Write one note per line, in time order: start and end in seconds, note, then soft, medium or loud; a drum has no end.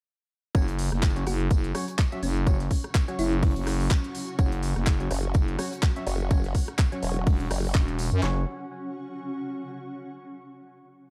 0.55 0.90 F#1 loud
0.55 0.65 F#3 loud
0.55 0.65 C#4 medium
0.55 8.22 C#4 medium
0.55 0.65 F#4 medium
0.55 0.65 C#5 loud
0.55 kick loud
0.55 closed hi-hat medium
0.55 tambourine medium
0.68 closed hi-hat medium
0.68 closed hi-hat soft
0.79 8.23 F#4 loud
0.79 8.23 F#5 medium
0.79 open hi-hat loud
0.79 tambourine medium
0.92 1.25 F#1 medium
0.92 8.23 C#6 medium
0.92 cross-stick medium
0.92 snare soft
0.92 closed hi-hat soft
1.03 kick loud
1.03 snare loud
1.03 clap loud
1.03 closed hi-hat medium
1.03 tambourine medium
1.16 1.24 F#3 medium
1.16 1.24 C#4 medium
1.16 1.24 F#4 medium
1.16 1.24 C#5 medium
1.16 closed hi-hat medium
1.26 1.49 F#1 loud
1.26 1.46 F#4 medium
1.26 cross-stick medium
1.26 open hi-hat loud
1.26 tambourine medium
1.50 1.73 F#1 loud
1.50 kick loud
1.50 closed hi-hat medium
1.50 tambourine medium
1.64 closed hi-hat medium
1.75 1.85 F#3 loud
1.75 1.85 C#4 medium
1.75 1.85 F#4 medium
1.75 1.85 C#5 loud
1.75 cross-stick medium
1.75 open hi-hat loud
1.75 tambourine medium
1.88 closed hi-hat soft
1.99 kick loud
1.99 snare loud
1.99 clap loud
1.99 closed hi-hat medium
1.99 tambourine medium
2.12 2.20 F#3 medium
2.12 2.20 C#4 medium
2.12 2.20 F#4 medium
2.12 2.20 E5 medium
2.12 closed hi-hat medium
2.23 2.69 F#1 loud
2.23 2.42 C#4 medium
2.23 open hi-hat loud
2.23 tambourine medium
2.36 closed hi-hat soft
2.47 2.57 F#3 medium
2.47 2.57 C#4 medium
2.47 2.57 F#4 medium
2.47 2.57 C#5 medium
2.47 kick loud
2.47 closed hi-hat medium
2.47 tambourine loud
2.60 snare soft
2.60 closed hi-hat medium
2.71 kick medium
2.71 open hi-hat loud
2.71 tambourine medium
2.84 cross-stick medium
2.84 closed hi-hat soft
2.95 kick loud
2.95 snare loud
2.95 clap loud
2.95 closed hi-hat medium
2.95 tambourine medium
3.08 4.36 F#3 medium
3.08 4.36 C#4 medium
3.08 4.36 F#4 medium
3.08 4.36 C#5 loud
3.08 closed hi-hat medium
3.19 3.54 F#1 loud
3.19 3.67 E4 medium
3.19 open hi-hat loud
3.19 tambourine medium
3.32 closed hi-hat soft
3.43 kick loud
3.43 closed hi-hat medium
3.43 open hi-hat medium
3.56 3.89 F#1 loud
3.56 closed hi-hat medium
3.67 cross-stick medium
3.67 open hi-hat loud
3.67 tambourine medium
3.80 open hi-hat medium
3.90 kick loud
3.90 snare loud
3.90 clap loud
3.90 closed hi-hat medium
3.90 tambourine loud
4.04 closed hi-hat medium
4.15 open hi-hat loud
4.15 tambourine medium
4.28 closed hi-hat soft
4.39 4.74 F#1 loud
4.39 4.49 F#3 loud
4.39 4.49 C#4 medium
4.39 4.49 F#4 medium
4.39 4.49 C#5 loud
4.39 kick loud
4.39 closed hi-hat medium
4.39 tambourine medium
4.52 closed hi-hat medium
4.52 closed hi-hat soft
4.62 open hi-hat loud
4.62 tambourine medium
4.76 5.09 F#1 medium
4.76 cross-stick medium
4.76 snare soft
4.76 closed hi-hat soft
4.86 kick loud
4.86 snare loud
4.86 clap loud
4.86 closed hi-hat medium
4.86 tambourine medium
5.00 5.08 F#3 medium
5.00 5.08 C#4 medium
5.00 5.08 F#4 medium
5.00 5.08 C#5 medium
5.00 closed hi-hat medium
5.11 5.33 F#1 loud
5.11 cross-stick medium
5.11 open hi-hat loud
5.11 tambourine medium
5.24 closed hi-hat soft
5.34 5.57 F#1 loud
5.34 kick loud
5.34 closed hi-hat medium
5.34 tambourine medium
5.48 closed hi-hat medium
5.59 5.69 F#3 loud
5.59 5.69 C#4 medium
5.59 5.69 F#4 medium
5.59 5.69 C#5 loud
5.59 cross-stick medium
5.59 open hi-hat loud
5.59 tambourine medium
5.72 closed hi-hat soft
5.83 kick loud
5.83 snare loud
5.83 clap loud
5.83 closed hi-hat medium
5.83 tambourine medium
5.96 6.04 F#3 medium
5.96 6.04 C#4 medium
5.96 6.04 F#4 medium
5.96 6.04 E5 medium
5.96 closed hi-hat medium
6.07 6.53 F#1 loud
6.07 open hi-hat loud
6.07 tambourine medium
6.20 closed hi-hat soft
6.30 6.41 F#3 medium
6.30 6.41 C#4 medium
6.30 6.41 F#4 medium
6.30 6.41 C#5 loud
6.30 kick loud
6.30 closed hi-hat medium
6.30 tambourine medium
6.44 snare soft
6.44 closed hi-hat medium
6.55 kick medium
6.55 open hi-hat loud
6.55 tambourine medium
6.68 cross-stick medium
6.68 closed hi-hat soft
6.78 kick loud
6.78 snare loud
6.78 clap loud
6.78 closed hi-hat medium
6.78 tambourine medium
6.92 8.20 F#3 loud
6.92 8.20 C#4 medium
6.92 8.20 F#4 medium
6.92 8.20 C#5 loud
6.92 closed hi-hat medium
7.03 7.25 E1 loud
7.03 open hi-hat loud
7.03 tambourine medium
7.16 closed hi-hat soft
7.27 7.49 E1 loud
7.27 kick loud
7.27 closed hi-hat medium
7.27 open hi-hat medium
7.40 closed hi-hat medium
7.51 7.73 F#1 loud
7.51 cross-stick medium
7.51 open hi-hat loud
7.51 tambourine medium
7.64 open hi-hat medium
7.74 8.10 E1 loud
7.74 kick loud
7.74 snare loud
7.74 clap loud
7.74 closed hi-hat medium
7.74 tambourine loud
7.88 closed hi-hat medium
7.99 open hi-hat loud
7.99 tambourine medium
8.12 8.21 F#2 loud
8.12 closed hi-hat soft
8.23 8.45 F#1 loud
8.23 8.41 F#3 medium
8.23 8.41 C#4 medium
8.23 10.11 C#4 medium
8.23 8.41 F#4 medium
8.23 8.41 C#5 loud
8.23 snare loud
8.23 clap medium
8.31 10.11 F#4 medium
8.39 10.11 F#5 medium
8.45 10.11 C#6 medium